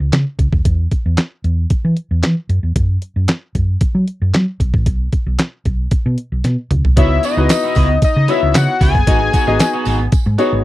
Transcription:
0.00 C#2
0.13 C#3, snare, clap, closed hi-hat
0.39 C#2, kick, closed hi-hat
0.52 D#2, kick
0.65 E2, kick, closed hi-hat
0.91 kick, closed hi-hat
1.06 E2
1.17 snare, clap, closed hi-hat
1.44 E2, closed hi-hat
1.70 muted fingered electric bass stroke, kick, closed hi-hat
1.85 E3
1.97 closed hi-hat
2.11 E2
2.23 E3, snare, clap, closed hi-hat
2.49 F#2, closed hi-hat
2.63 E2
2.76 F#2, kick, closed hi-hat
3.02 closed hi-hat
3.16 F#2
3.28 snare, clap, closed hi-hat
3.55 F#2, kick, closed hi-hat
3.81 muted fingered electric bass stroke, kick, closed hi-hat
3.95 F#3
4.08 closed hi-hat
4.22 F#2
4.34 F#3, snare, clap, closed hi-hat
4.60 B1, kick, closed hi-hat
4.74 A1, kick
4.86 B1, kick, closed hi-hat
5.12 kick, closed hi-hat
5.27 B1
5.39 snare, clap, closed hi-hat
5.65 B1, kick, closed hi-hat
5.91 muted fingered electric bass stroke, kick, closed hi-hat
6.06 B2
6.18 closed hi-hat
6.32 B1
6.44 B2, snare, closed hi-hat
6.71 C#2, closed hi-hat, mid tom
6.84 B1, floor tom
6.96 C#2 B3 D#4 E4 F#4 C#5 E5, kick, closed hi-hat
7.11 muted clean electric guitar stroke
7.23 B3 E4 F#4 D#5, closed hi-hat, tambourine
7.37 C#2 B3 D#4 E4 F#4 G#4 B4
7.49 muted clean electric guitar stroke, snare, clap, closed hi-hat, tambourine
7.63 B3 E4 F#4
7.75 C#2 B3 E4 F#4, kick, open hi-hat, tambourine
7.90 muted clean electric guitar stroke
8.02 D#5, muted fingered electric bass stroke, kick, closed hi-hat, tambourine
8.16 C#3, muted clean electric guitar stroke
8.28 B3 D#4 E4 F#4 C#5 E5, closed hi-hat, tambourine
8.42 C#2, muted clean electric guitar stroke
8.54 C#3 F#5, muted clean electric guitar stroke, snare, clap, closed hi-hat, tambourine
8.68 muted clean electric guitar stroke
8.81 C#2 B3 E4 F#4 G#5, kick, open hi-hat, tambourine
8.95 F#1, muted clean electric guitar stroke, kick
9.07 G#1 B3 D#4 F#4 G#4 D#5, kick, closed hi-hat, tambourine
9.21 muted clean electric guitar stroke
9.33 B3 D#4 F#4, kick, closed hi-hat, tambourine
9.47 G#1 B3 D#4 F#4 G#4 D#5
9.59 muted clean electric guitar stroke, snare, clap, closed hi-hat, tambourine
9.73 B3 D#4 F#4
9.85 G#1 B3 D#4 F#4, open hi-hat, tambourine
10.00 muted clean electric guitar stroke
10.12 muted fingered electric bass stroke, kick, closed hi-hat, tambourine
10.26 G#2, muted clean electric guitar stroke
10.38 B3 D#4 F#4 G#4 C#5, closed hi-hat, tambourine
10.53 G#1, muted clean electric guitar stroke

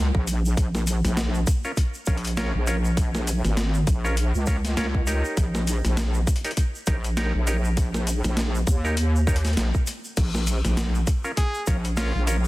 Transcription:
Already playing: C#2
0.15 A#1, kick
0.27 closed hi-hat, shaker
0.45 shaker
0.57 A#1, kick, closed hi-hat, shaker
0.75 snare, shaker
0.87 closed hi-hat, shaker
1.04 A#1, snare, closed hi-hat, shaker
1.17 snare, closed hi-hat, shaker
1.34 shaker
1.47 kick, closed hi-hat, shaker
1.64 C#4 F4 A#4 C#5, shaker
1.77 kick, closed hi-hat, shaker
1.94 shaker
2.06 A#1 C#4 F4 A#4 C#5, kick, closed hi-hat, shaker
2.17 closed hi-hat
2.24 closed hi-hat, shaker
2.27 closed hi-hat
2.37 C#4 F4 A#4 C#5, snare, closed hi-hat, shaker
2.55 A#1
2.67 C#4 F4 A#4 C#5, closed hi-hat, shaker
2.85 shaker
2.97 kick, closed hi-hat, shaker
3.15 snare, shaker
3.27 closed hi-hat, shaker
3.45 G#1, snare, closed hi-hat, shaker
3.57 snare, closed hi-hat, shaker
3.74 shaker
3.87 A#1, kick, closed hi-hat, shaker
4.04 C#4 F4 A#4 C#5, shaker
4.17 closed hi-hat, shaker
4.34 C#2, shaker
4.47 C#4 F4 A#4 C#5, kick, closed hi-hat, shaker
4.65 snare, closed hi-hat, shaker
4.77 C#2 C#4 F4 A#4 C#5, snare, closed hi-hat, shaker
4.95 kick
5.07 D#4 G4 A#4 C#5, closed hi-hat, shaker
5.25 shaker
5.37 A#1, kick, closed hi-hat, shaker
5.55 snare, shaker
5.67 closed hi-hat, shaker
5.85 A#1, snare, closed hi-hat, shaker
5.97 snare, closed hi-hat, shaker
6.14 shaker
6.27 kick, closed hi-hat, shaker
6.36 closed hi-hat
6.44 D#4 G4 A#4 C#5, closed hi-hat, shaker
6.51 closed hi-hat
6.57 kick, closed hi-hat, shaker
6.75 shaker
6.87 A#1 D#4 G4 A#4 C#5, kick, closed hi-hat, shaker
7.04 closed hi-hat, shaker
7.17 D#4 G4 A#4 C#5, snare, closed hi-hat, shaker
7.34 A#1
7.47 D#4 G4 A#4 C#5, closed hi-hat, shaker
7.64 shaker
7.77 kick, closed hi-hat, shaker
7.94 snare, shaker
8.07 closed hi-hat, shaker
8.24 A#1, snare, closed hi-hat, shaker
8.37 snare, closed hi-hat, shaker
8.55 shaker
8.67 D#2, kick, closed hi-hat, shaker
8.85 D#4 G4 A#4 C#5, shaker
8.97 closed hi-hat, shaker
9.16 shaker
9.27 D#4 G4 A#4 C#5, kick, shaker
9.36 closed hi-hat
9.45 snare, closed hi-hat, shaker
9.47 closed hi-hat
9.53 closed hi-hat
9.57 A#1, snare, closed hi-hat, shaker
9.74 kick, shaker
9.87 closed hi-hat, shaker
10.04 shaker
10.17 A#1, kick, closed hi-hat, crash, shaker
10.35 snare, shaker
10.47 closed hi-hat, shaker
10.65 A#1, snare, closed hi-hat, shaker
10.77 snare, closed hi-hat, shaker
10.95 shaker
11.07 kick, closed hi-hat, shaker
11.24 C#4 F4 A#4 C#5, shaker
11.37 G#4, kick, closed hi-hat, shaker
11.54 shaker
11.67 A#1 C#4 F4 A#4 C#5, kick, closed hi-hat, shaker
11.85 closed hi-hat, shaker
11.97 C#4 F4 A#4 C#5, snare, closed hi-hat, shaker
12.15 A#1
12.27 C#4 F4 A#4 C#5, closed hi-hat, shaker
12.44 shaker

